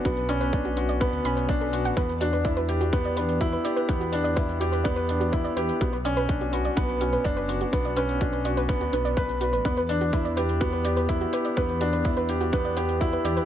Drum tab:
HH |xxxxxxxxxxxxxxxx|xxxxxxxxxxxxxxxx|xxxxxxxxxxxxxxxx|xxxxxxxxxxxxxxxx|
BD |o---o---o---o---|o---o---o---o---|o---o---o---o---|o---o---o---o---|

HH |xxxxxxxxxxxxxxxx|xxxxxxxxxxxxxxxx|xxxxxxxxxxxxxxxx|
BD |o---o---o---o---|o---o---o---o---|o---o---o---o---|